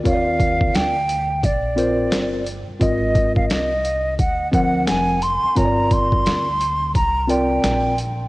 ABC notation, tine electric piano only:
X:1
M:4/4
L:1/16
Q:"Swing 16ths" 1/4=87
K:Eb
V:1 name="Tine electric piano"
[CFB_d=d]4- [CFB_d=d] z4 z [CFBc]4 z2 | [CFBe]4- [CFBe] z4 z [F,CB_g]4 z2 | [CFB_d=d]4- [CFB_d=d] z4 z [CFBd]4 z2 |]